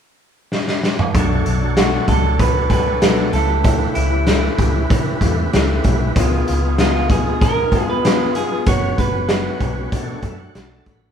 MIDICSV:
0, 0, Header, 1, 6, 480
1, 0, Start_track
1, 0, Key_signature, 2, "minor"
1, 0, Tempo, 626959
1, 878, Time_signature, 4, 2, 24, 8
1, 8511, End_track
2, 0, Start_track
2, 0, Title_t, "Clean electric guitar"
2, 0, Program_c, 0, 27
2, 1364, Note_on_c, 0, 66, 91
2, 1596, Note_off_c, 0, 66, 0
2, 1599, Note_on_c, 0, 69, 86
2, 1836, Note_off_c, 0, 69, 0
2, 1839, Note_on_c, 0, 71, 90
2, 2066, Note_off_c, 0, 71, 0
2, 2075, Note_on_c, 0, 71, 93
2, 2549, Note_off_c, 0, 71, 0
2, 2552, Note_on_c, 0, 69, 90
2, 3026, Note_on_c, 0, 64, 69
2, 3050, Note_off_c, 0, 69, 0
2, 4442, Note_off_c, 0, 64, 0
2, 5207, Note_on_c, 0, 65, 78
2, 5427, Note_off_c, 0, 65, 0
2, 5444, Note_on_c, 0, 68, 89
2, 5677, Note_off_c, 0, 68, 0
2, 5680, Note_on_c, 0, 70, 89
2, 6042, Note_off_c, 0, 70, 0
2, 6045, Note_on_c, 0, 71, 88
2, 6398, Note_off_c, 0, 71, 0
2, 6401, Note_on_c, 0, 68, 97
2, 6639, Note_off_c, 0, 68, 0
2, 6642, Note_on_c, 0, 73, 94
2, 6885, Note_off_c, 0, 73, 0
2, 6888, Note_on_c, 0, 71, 88
2, 8291, Note_off_c, 0, 71, 0
2, 8511, End_track
3, 0, Start_track
3, 0, Title_t, "Tonewheel organ"
3, 0, Program_c, 1, 16
3, 862, Note_on_c, 1, 62, 68
3, 873, Note_on_c, 1, 66, 63
3, 888, Note_on_c, 1, 69, 59
3, 901, Note_on_c, 1, 73, 77
3, 2520, Note_off_c, 1, 62, 0
3, 2525, Note_off_c, 1, 66, 0
3, 2533, Note_off_c, 1, 69, 0
3, 2538, Note_on_c, 1, 61, 63
3, 2539, Note_off_c, 1, 73, 0
3, 2551, Note_on_c, 1, 64, 59
3, 2562, Note_on_c, 1, 67, 53
3, 2576, Note_on_c, 1, 71, 70
3, 4679, Note_off_c, 1, 61, 0
3, 4685, Note_off_c, 1, 64, 0
3, 4691, Note_off_c, 1, 67, 0
3, 4698, Note_off_c, 1, 71, 0
3, 4704, Note_on_c, 1, 63, 73
3, 4717, Note_on_c, 1, 65, 64
3, 4729, Note_on_c, 1, 68, 63
3, 4741, Note_on_c, 1, 59, 81
3, 6600, Note_off_c, 1, 63, 0
3, 6607, Note_off_c, 1, 65, 0
3, 6613, Note_off_c, 1, 68, 0
3, 6619, Note_off_c, 1, 59, 0
3, 6625, Note_on_c, 1, 61, 67
3, 6635, Note_on_c, 1, 66, 61
3, 6649, Note_on_c, 1, 71, 51
3, 6663, Note_on_c, 1, 73, 63
3, 7572, Note_off_c, 1, 61, 0
3, 7577, Note_off_c, 1, 66, 0
3, 7584, Note_off_c, 1, 71, 0
3, 7584, Note_on_c, 1, 62, 70
3, 7591, Note_off_c, 1, 73, 0
3, 7598, Note_on_c, 1, 66, 64
3, 7613, Note_on_c, 1, 69, 60
3, 7625, Note_on_c, 1, 73, 79
3, 7843, Note_on_c, 1, 76, 59
3, 7952, Note_off_c, 1, 76, 0
3, 7960, Note_on_c, 1, 78, 69
3, 8070, Note_off_c, 1, 78, 0
3, 8083, Note_on_c, 1, 81, 54
3, 8191, Note_off_c, 1, 81, 0
3, 8200, Note_on_c, 1, 81, 55
3, 8310, Note_off_c, 1, 81, 0
3, 8320, Note_on_c, 1, 83, 65
3, 8511, Note_off_c, 1, 62, 0
3, 8511, Note_off_c, 1, 66, 0
3, 8511, Note_off_c, 1, 69, 0
3, 8511, Note_off_c, 1, 73, 0
3, 8511, Note_off_c, 1, 83, 0
3, 8511, End_track
4, 0, Start_track
4, 0, Title_t, "Steel-string acoustic guitar"
4, 0, Program_c, 2, 25
4, 871, Note_on_c, 2, 47, 77
4, 876, Note_on_c, 2, 54, 76
4, 879, Note_on_c, 2, 57, 79
4, 883, Note_on_c, 2, 62, 81
4, 1227, Note_off_c, 2, 62, 0
4, 1235, Note_off_c, 2, 47, 0
4, 1237, Note_off_c, 2, 54, 0
4, 1237, Note_on_c, 2, 62, 49
4, 1239, Note_off_c, 2, 57, 0
4, 1246, Note_on_c, 2, 57, 41
4, 1253, Note_on_c, 2, 54, 45
4, 1344, Note_off_c, 2, 54, 0
4, 1347, Note_off_c, 2, 57, 0
4, 1347, Note_on_c, 2, 47, 67
4, 1350, Note_off_c, 2, 62, 0
4, 1353, Note_on_c, 2, 54, 68
4, 1356, Note_on_c, 2, 57, 76
4, 1359, Note_on_c, 2, 62, 80
4, 1584, Note_off_c, 2, 47, 0
4, 1588, Note_off_c, 2, 54, 0
4, 1593, Note_on_c, 2, 47, 57
4, 1594, Note_off_c, 2, 57, 0
4, 1598, Note_on_c, 2, 54, 56
4, 1599, Note_off_c, 2, 62, 0
4, 1604, Note_on_c, 2, 57, 55
4, 1608, Note_on_c, 2, 62, 55
4, 1703, Note_off_c, 2, 62, 0
4, 1711, Note_off_c, 2, 57, 0
4, 1712, Note_on_c, 2, 62, 44
4, 1716, Note_off_c, 2, 47, 0
4, 1718, Note_off_c, 2, 54, 0
4, 1721, Note_on_c, 2, 57, 43
4, 1729, Note_on_c, 2, 54, 39
4, 2075, Note_off_c, 2, 54, 0
4, 2075, Note_off_c, 2, 62, 0
4, 2080, Note_off_c, 2, 57, 0
4, 2081, Note_on_c, 2, 47, 51
4, 2084, Note_on_c, 2, 54, 56
4, 2090, Note_on_c, 2, 57, 58
4, 2095, Note_on_c, 2, 62, 62
4, 2192, Note_off_c, 2, 62, 0
4, 2198, Note_off_c, 2, 57, 0
4, 2200, Note_off_c, 2, 47, 0
4, 2201, Note_off_c, 2, 54, 0
4, 2201, Note_on_c, 2, 62, 48
4, 2208, Note_on_c, 2, 57, 41
4, 2211, Note_on_c, 2, 54, 38
4, 2316, Note_off_c, 2, 57, 0
4, 2317, Note_off_c, 2, 54, 0
4, 2318, Note_on_c, 2, 47, 77
4, 2320, Note_off_c, 2, 62, 0
4, 2325, Note_on_c, 2, 57, 89
4, 2326, Note_on_c, 2, 54, 76
4, 2330, Note_on_c, 2, 62, 88
4, 2554, Note_off_c, 2, 47, 0
4, 2557, Note_off_c, 2, 54, 0
4, 2557, Note_on_c, 2, 49, 55
4, 2560, Note_on_c, 2, 55, 58
4, 2562, Note_off_c, 2, 57, 0
4, 2565, Note_off_c, 2, 62, 0
4, 2568, Note_on_c, 2, 64, 54
4, 2570, Note_on_c, 2, 57, 61
4, 2665, Note_off_c, 2, 64, 0
4, 2670, Note_off_c, 2, 57, 0
4, 2674, Note_on_c, 2, 64, 60
4, 2678, Note_off_c, 2, 49, 0
4, 2679, Note_on_c, 2, 57, 55
4, 2680, Note_off_c, 2, 55, 0
4, 2688, Note_on_c, 2, 55, 43
4, 2786, Note_off_c, 2, 55, 0
4, 2790, Note_off_c, 2, 57, 0
4, 2791, Note_on_c, 2, 49, 72
4, 2794, Note_off_c, 2, 64, 0
4, 2795, Note_on_c, 2, 55, 67
4, 2799, Note_on_c, 2, 57, 73
4, 2803, Note_on_c, 2, 64, 84
4, 3137, Note_off_c, 2, 64, 0
4, 3145, Note_off_c, 2, 57, 0
4, 3146, Note_on_c, 2, 64, 49
4, 3155, Note_off_c, 2, 49, 0
4, 3155, Note_on_c, 2, 57, 44
4, 3157, Note_off_c, 2, 55, 0
4, 3166, Note_on_c, 2, 55, 43
4, 3263, Note_off_c, 2, 55, 0
4, 3268, Note_off_c, 2, 64, 0
4, 3271, Note_off_c, 2, 57, 0
4, 3271, Note_on_c, 2, 49, 69
4, 3272, Note_on_c, 2, 55, 73
4, 3277, Note_on_c, 2, 64, 92
4, 3280, Note_on_c, 2, 57, 86
4, 3498, Note_off_c, 2, 49, 0
4, 3507, Note_off_c, 2, 55, 0
4, 3508, Note_on_c, 2, 49, 54
4, 3509, Note_off_c, 2, 57, 0
4, 3515, Note_off_c, 2, 64, 0
4, 3516, Note_on_c, 2, 55, 54
4, 3518, Note_on_c, 2, 57, 64
4, 3524, Note_on_c, 2, 64, 59
4, 3626, Note_off_c, 2, 64, 0
4, 3632, Note_off_c, 2, 57, 0
4, 3633, Note_off_c, 2, 49, 0
4, 3636, Note_on_c, 2, 64, 59
4, 3638, Note_off_c, 2, 55, 0
4, 3642, Note_on_c, 2, 57, 49
4, 3649, Note_on_c, 2, 55, 51
4, 3994, Note_off_c, 2, 55, 0
4, 3996, Note_on_c, 2, 49, 64
4, 3997, Note_off_c, 2, 57, 0
4, 3998, Note_off_c, 2, 64, 0
4, 4003, Note_on_c, 2, 55, 71
4, 4006, Note_on_c, 2, 57, 72
4, 4007, Note_on_c, 2, 64, 73
4, 4108, Note_off_c, 2, 64, 0
4, 4117, Note_off_c, 2, 49, 0
4, 4117, Note_on_c, 2, 64, 53
4, 4118, Note_off_c, 2, 57, 0
4, 4121, Note_off_c, 2, 55, 0
4, 4127, Note_on_c, 2, 57, 53
4, 4133, Note_on_c, 2, 55, 40
4, 4230, Note_off_c, 2, 55, 0
4, 4231, Note_off_c, 2, 57, 0
4, 4236, Note_on_c, 2, 49, 84
4, 4238, Note_off_c, 2, 64, 0
4, 4239, Note_on_c, 2, 55, 99
4, 4240, Note_on_c, 2, 57, 85
4, 4247, Note_on_c, 2, 64, 93
4, 4472, Note_off_c, 2, 49, 0
4, 4476, Note_off_c, 2, 55, 0
4, 4480, Note_off_c, 2, 57, 0
4, 4482, Note_on_c, 2, 49, 59
4, 4483, Note_off_c, 2, 64, 0
4, 4485, Note_on_c, 2, 55, 58
4, 4491, Note_on_c, 2, 57, 59
4, 4494, Note_on_c, 2, 64, 62
4, 4584, Note_off_c, 2, 64, 0
4, 4594, Note_off_c, 2, 57, 0
4, 4594, Note_on_c, 2, 64, 65
4, 4599, Note_off_c, 2, 55, 0
4, 4601, Note_off_c, 2, 49, 0
4, 4603, Note_on_c, 2, 57, 58
4, 4608, Note_on_c, 2, 55, 55
4, 4717, Note_off_c, 2, 64, 0
4, 4719, Note_off_c, 2, 55, 0
4, 4721, Note_off_c, 2, 57, 0
4, 4721, Note_on_c, 2, 49, 90
4, 4722, Note_on_c, 2, 56, 79
4, 4726, Note_on_c, 2, 59, 84
4, 4728, Note_on_c, 2, 65, 92
4, 5065, Note_off_c, 2, 65, 0
4, 5072, Note_off_c, 2, 59, 0
4, 5074, Note_on_c, 2, 65, 45
4, 5080, Note_off_c, 2, 49, 0
4, 5081, Note_off_c, 2, 56, 0
4, 5081, Note_on_c, 2, 59, 49
4, 5089, Note_on_c, 2, 56, 37
4, 5197, Note_off_c, 2, 59, 0
4, 5197, Note_off_c, 2, 65, 0
4, 5197, Note_on_c, 2, 49, 79
4, 5198, Note_off_c, 2, 56, 0
4, 5206, Note_on_c, 2, 59, 75
4, 5207, Note_on_c, 2, 56, 77
4, 5210, Note_on_c, 2, 65, 90
4, 5438, Note_off_c, 2, 49, 0
4, 5443, Note_off_c, 2, 56, 0
4, 5443, Note_off_c, 2, 59, 0
4, 5445, Note_off_c, 2, 65, 0
4, 5447, Note_on_c, 2, 49, 60
4, 5454, Note_on_c, 2, 56, 64
4, 5458, Note_on_c, 2, 59, 58
4, 5463, Note_on_c, 2, 65, 66
4, 5551, Note_off_c, 2, 65, 0
4, 5560, Note_on_c, 2, 65, 52
4, 5563, Note_off_c, 2, 49, 0
4, 5563, Note_off_c, 2, 59, 0
4, 5567, Note_off_c, 2, 56, 0
4, 5573, Note_on_c, 2, 59, 48
4, 5577, Note_on_c, 2, 56, 42
4, 5918, Note_on_c, 2, 49, 54
4, 5919, Note_off_c, 2, 56, 0
4, 5920, Note_off_c, 2, 59, 0
4, 5920, Note_off_c, 2, 65, 0
4, 5928, Note_on_c, 2, 56, 61
4, 5929, Note_on_c, 2, 59, 61
4, 5934, Note_on_c, 2, 65, 62
4, 6027, Note_off_c, 2, 65, 0
4, 6037, Note_on_c, 2, 65, 46
4, 6038, Note_off_c, 2, 49, 0
4, 6039, Note_off_c, 2, 59, 0
4, 6044, Note_off_c, 2, 56, 0
4, 6048, Note_on_c, 2, 59, 41
4, 6054, Note_on_c, 2, 56, 38
4, 6158, Note_off_c, 2, 56, 0
4, 6158, Note_off_c, 2, 65, 0
4, 6163, Note_on_c, 2, 49, 82
4, 6164, Note_off_c, 2, 59, 0
4, 6168, Note_on_c, 2, 56, 93
4, 6173, Note_on_c, 2, 59, 84
4, 6176, Note_on_c, 2, 65, 88
4, 6390, Note_off_c, 2, 49, 0
4, 6399, Note_off_c, 2, 56, 0
4, 6400, Note_off_c, 2, 59, 0
4, 6400, Note_on_c, 2, 49, 46
4, 6402, Note_off_c, 2, 65, 0
4, 6408, Note_on_c, 2, 56, 59
4, 6409, Note_on_c, 2, 59, 56
4, 6411, Note_on_c, 2, 65, 60
4, 6512, Note_off_c, 2, 65, 0
4, 6519, Note_off_c, 2, 49, 0
4, 6521, Note_off_c, 2, 59, 0
4, 6521, Note_on_c, 2, 65, 55
4, 6524, Note_off_c, 2, 56, 0
4, 6530, Note_on_c, 2, 59, 51
4, 6537, Note_on_c, 2, 56, 42
4, 6635, Note_off_c, 2, 56, 0
4, 6636, Note_off_c, 2, 59, 0
4, 6638, Note_on_c, 2, 54, 69
4, 6640, Note_off_c, 2, 65, 0
4, 6645, Note_on_c, 2, 59, 80
4, 6645, Note_on_c, 2, 61, 65
4, 6650, Note_on_c, 2, 66, 82
4, 6988, Note_off_c, 2, 66, 0
4, 6998, Note_off_c, 2, 54, 0
4, 6998, Note_off_c, 2, 61, 0
4, 6998, Note_on_c, 2, 66, 46
4, 7002, Note_off_c, 2, 59, 0
4, 7007, Note_on_c, 2, 61, 53
4, 7012, Note_on_c, 2, 59, 43
4, 7106, Note_off_c, 2, 59, 0
4, 7112, Note_off_c, 2, 66, 0
4, 7113, Note_on_c, 2, 54, 67
4, 7114, Note_off_c, 2, 61, 0
4, 7115, Note_on_c, 2, 59, 71
4, 7121, Note_on_c, 2, 66, 78
4, 7123, Note_on_c, 2, 61, 73
4, 7351, Note_off_c, 2, 54, 0
4, 7357, Note_off_c, 2, 59, 0
4, 7360, Note_off_c, 2, 61, 0
4, 7360, Note_off_c, 2, 66, 0
4, 7360, Note_on_c, 2, 54, 54
4, 7368, Note_on_c, 2, 59, 62
4, 7374, Note_on_c, 2, 61, 69
4, 7374, Note_on_c, 2, 66, 64
4, 7471, Note_off_c, 2, 66, 0
4, 7479, Note_off_c, 2, 54, 0
4, 7479, Note_off_c, 2, 61, 0
4, 7481, Note_on_c, 2, 66, 55
4, 7483, Note_off_c, 2, 59, 0
4, 7488, Note_on_c, 2, 61, 46
4, 7492, Note_on_c, 2, 59, 48
4, 7599, Note_off_c, 2, 66, 0
4, 7603, Note_off_c, 2, 61, 0
4, 7605, Note_off_c, 2, 59, 0
4, 7606, Note_on_c, 2, 47, 72
4, 7608, Note_on_c, 2, 62, 83
4, 7610, Note_on_c, 2, 57, 83
4, 7617, Note_on_c, 2, 66, 86
4, 7828, Note_off_c, 2, 47, 0
4, 7838, Note_off_c, 2, 57, 0
4, 7838, Note_on_c, 2, 47, 63
4, 7842, Note_off_c, 2, 62, 0
4, 7847, Note_off_c, 2, 66, 0
4, 7847, Note_on_c, 2, 57, 61
4, 7853, Note_on_c, 2, 62, 71
4, 7857, Note_on_c, 2, 66, 64
4, 7956, Note_off_c, 2, 66, 0
4, 7957, Note_off_c, 2, 47, 0
4, 7962, Note_off_c, 2, 57, 0
4, 7965, Note_off_c, 2, 62, 0
4, 7965, Note_on_c, 2, 66, 55
4, 7978, Note_on_c, 2, 62, 43
4, 7979, Note_on_c, 2, 57, 47
4, 8080, Note_off_c, 2, 57, 0
4, 8081, Note_off_c, 2, 66, 0
4, 8082, Note_on_c, 2, 47, 73
4, 8083, Note_off_c, 2, 62, 0
4, 8090, Note_on_c, 2, 57, 75
4, 8092, Note_on_c, 2, 62, 97
4, 8095, Note_on_c, 2, 66, 91
4, 8319, Note_off_c, 2, 47, 0
4, 8323, Note_off_c, 2, 57, 0
4, 8324, Note_off_c, 2, 62, 0
4, 8326, Note_off_c, 2, 66, 0
4, 8329, Note_on_c, 2, 47, 58
4, 8334, Note_on_c, 2, 57, 64
4, 8337, Note_on_c, 2, 62, 62
4, 8344, Note_on_c, 2, 66, 63
4, 8437, Note_off_c, 2, 66, 0
4, 8443, Note_off_c, 2, 47, 0
4, 8445, Note_off_c, 2, 57, 0
4, 8446, Note_on_c, 2, 66, 60
4, 8447, Note_off_c, 2, 62, 0
4, 8456, Note_on_c, 2, 62, 52
4, 8467, Note_on_c, 2, 57, 50
4, 8511, Note_off_c, 2, 57, 0
4, 8511, Note_off_c, 2, 62, 0
4, 8511, Note_off_c, 2, 66, 0
4, 8511, End_track
5, 0, Start_track
5, 0, Title_t, "Fingered electric bass"
5, 0, Program_c, 3, 33
5, 874, Note_on_c, 3, 35, 89
5, 1068, Note_off_c, 3, 35, 0
5, 1119, Note_on_c, 3, 35, 86
5, 1503, Note_off_c, 3, 35, 0
5, 1588, Note_on_c, 3, 37, 78
5, 2523, Note_off_c, 3, 37, 0
5, 2553, Note_on_c, 3, 37, 87
5, 2940, Note_off_c, 3, 37, 0
5, 3032, Note_on_c, 3, 37, 89
5, 3419, Note_off_c, 3, 37, 0
5, 3508, Note_on_c, 3, 37, 76
5, 3704, Note_off_c, 3, 37, 0
5, 3751, Note_on_c, 3, 49, 93
5, 3946, Note_off_c, 3, 49, 0
5, 3987, Note_on_c, 3, 40, 92
5, 4184, Note_off_c, 3, 40, 0
5, 4243, Note_on_c, 3, 37, 89
5, 4434, Note_off_c, 3, 37, 0
5, 4480, Note_on_c, 3, 35, 88
5, 4672, Note_off_c, 3, 35, 0
5, 4713, Note_on_c, 3, 37, 106
5, 4908, Note_off_c, 3, 37, 0
5, 4971, Note_on_c, 3, 37, 90
5, 6375, Note_off_c, 3, 37, 0
5, 6637, Note_on_c, 3, 30, 100
5, 6830, Note_off_c, 3, 30, 0
5, 6879, Note_on_c, 3, 30, 89
5, 7262, Note_off_c, 3, 30, 0
5, 7353, Note_on_c, 3, 35, 77
5, 7547, Note_off_c, 3, 35, 0
5, 7598, Note_on_c, 3, 47, 79
5, 7790, Note_off_c, 3, 47, 0
5, 7826, Note_on_c, 3, 42, 68
5, 8022, Note_off_c, 3, 42, 0
5, 8079, Note_on_c, 3, 35, 67
5, 8270, Note_off_c, 3, 35, 0
5, 8321, Note_on_c, 3, 33, 80
5, 8511, Note_off_c, 3, 33, 0
5, 8511, End_track
6, 0, Start_track
6, 0, Title_t, "Drums"
6, 397, Note_on_c, 9, 38, 59
6, 473, Note_off_c, 9, 38, 0
6, 517, Note_on_c, 9, 38, 60
6, 594, Note_off_c, 9, 38, 0
6, 639, Note_on_c, 9, 38, 75
6, 716, Note_off_c, 9, 38, 0
6, 759, Note_on_c, 9, 45, 91
6, 836, Note_off_c, 9, 45, 0
6, 878, Note_on_c, 9, 36, 100
6, 880, Note_on_c, 9, 42, 91
6, 954, Note_off_c, 9, 36, 0
6, 956, Note_off_c, 9, 42, 0
6, 1117, Note_on_c, 9, 42, 66
6, 1193, Note_off_c, 9, 42, 0
6, 1353, Note_on_c, 9, 38, 103
6, 1355, Note_on_c, 9, 42, 80
6, 1430, Note_off_c, 9, 38, 0
6, 1431, Note_off_c, 9, 42, 0
6, 1592, Note_on_c, 9, 36, 84
6, 1592, Note_on_c, 9, 42, 69
6, 1668, Note_off_c, 9, 36, 0
6, 1668, Note_off_c, 9, 42, 0
6, 1834, Note_on_c, 9, 36, 104
6, 1834, Note_on_c, 9, 42, 84
6, 1910, Note_off_c, 9, 36, 0
6, 1910, Note_off_c, 9, 42, 0
6, 2067, Note_on_c, 9, 36, 76
6, 2069, Note_on_c, 9, 42, 73
6, 2143, Note_off_c, 9, 36, 0
6, 2145, Note_off_c, 9, 42, 0
6, 2310, Note_on_c, 9, 42, 80
6, 2312, Note_on_c, 9, 38, 110
6, 2387, Note_off_c, 9, 42, 0
6, 2388, Note_off_c, 9, 38, 0
6, 2549, Note_on_c, 9, 42, 51
6, 2626, Note_off_c, 9, 42, 0
6, 2788, Note_on_c, 9, 42, 94
6, 2791, Note_on_c, 9, 36, 106
6, 2865, Note_off_c, 9, 42, 0
6, 2867, Note_off_c, 9, 36, 0
6, 3025, Note_on_c, 9, 42, 74
6, 3102, Note_off_c, 9, 42, 0
6, 3267, Note_on_c, 9, 38, 101
6, 3268, Note_on_c, 9, 42, 77
6, 3344, Note_off_c, 9, 38, 0
6, 3345, Note_off_c, 9, 42, 0
6, 3511, Note_on_c, 9, 36, 86
6, 3511, Note_on_c, 9, 42, 72
6, 3587, Note_off_c, 9, 36, 0
6, 3587, Note_off_c, 9, 42, 0
6, 3754, Note_on_c, 9, 36, 105
6, 3757, Note_on_c, 9, 42, 82
6, 3831, Note_off_c, 9, 36, 0
6, 3834, Note_off_c, 9, 42, 0
6, 3989, Note_on_c, 9, 36, 70
6, 3993, Note_on_c, 9, 42, 77
6, 4065, Note_off_c, 9, 36, 0
6, 4070, Note_off_c, 9, 42, 0
6, 4236, Note_on_c, 9, 42, 77
6, 4238, Note_on_c, 9, 38, 105
6, 4313, Note_off_c, 9, 42, 0
6, 4315, Note_off_c, 9, 38, 0
6, 4471, Note_on_c, 9, 42, 62
6, 4476, Note_on_c, 9, 36, 82
6, 4548, Note_off_c, 9, 42, 0
6, 4553, Note_off_c, 9, 36, 0
6, 4716, Note_on_c, 9, 36, 105
6, 4717, Note_on_c, 9, 42, 95
6, 4792, Note_off_c, 9, 36, 0
6, 4793, Note_off_c, 9, 42, 0
6, 4958, Note_on_c, 9, 42, 74
6, 5035, Note_off_c, 9, 42, 0
6, 5194, Note_on_c, 9, 38, 101
6, 5195, Note_on_c, 9, 42, 72
6, 5270, Note_off_c, 9, 38, 0
6, 5272, Note_off_c, 9, 42, 0
6, 5433, Note_on_c, 9, 36, 80
6, 5435, Note_on_c, 9, 42, 81
6, 5510, Note_off_c, 9, 36, 0
6, 5511, Note_off_c, 9, 42, 0
6, 5677, Note_on_c, 9, 36, 99
6, 5681, Note_on_c, 9, 42, 83
6, 5753, Note_off_c, 9, 36, 0
6, 5758, Note_off_c, 9, 42, 0
6, 5910, Note_on_c, 9, 36, 75
6, 5912, Note_on_c, 9, 42, 71
6, 5986, Note_off_c, 9, 36, 0
6, 5988, Note_off_c, 9, 42, 0
6, 6161, Note_on_c, 9, 42, 81
6, 6163, Note_on_c, 9, 38, 105
6, 6238, Note_off_c, 9, 42, 0
6, 6240, Note_off_c, 9, 38, 0
6, 6392, Note_on_c, 9, 42, 59
6, 6469, Note_off_c, 9, 42, 0
6, 6633, Note_on_c, 9, 42, 103
6, 6635, Note_on_c, 9, 36, 98
6, 6710, Note_off_c, 9, 42, 0
6, 6712, Note_off_c, 9, 36, 0
6, 6877, Note_on_c, 9, 36, 82
6, 6879, Note_on_c, 9, 42, 71
6, 6954, Note_off_c, 9, 36, 0
6, 6956, Note_off_c, 9, 42, 0
6, 7109, Note_on_c, 9, 38, 117
6, 7111, Note_on_c, 9, 42, 73
6, 7186, Note_off_c, 9, 38, 0
6, 7187, Note_off_c, 9, 42, 0
6, 7354, Note_on_c, 9, 36, 90
6, 7354, Note_on_c, 9, 42, 74
6, 7430, Note_off_c, 9, 42, 0
6, 7431, Note_off_c, 9, 36, 0
6, 7597, Note_on_c, 9, 36, 101
6, 7597, Note_on_c, 9, 42, 91
6, 7673, Note_off_c, 9, 36, 0
6, 7673, Note_off_c, 9, 42, 0
6, 7828, Note_on_c, 9, 42, 68
6, 7829, Note_on_c, 9, 36, 87
6, 7905, Note_off_c, 9, 36, 0
6, 7905, Note_off_c, 9, 42, 0
6, 8078, Note_on_c, 9, 42, 79
6, 8079, Note_on_c, 9, 38, 95
6, 8154, Note_off_c, 9, 42, 0
6, 8156, Note_off_c, 9, 38, 0
6, 8314, Note_on_c, 9, 42, 55
6, 8318, Note_on_c, 9, 36, 83
6, 8390, Note_off_c, 9, 42, 0
6, 8394, Note_off_c, 9, 36, 0
6, 8511, End_track
0, 0, End_of_file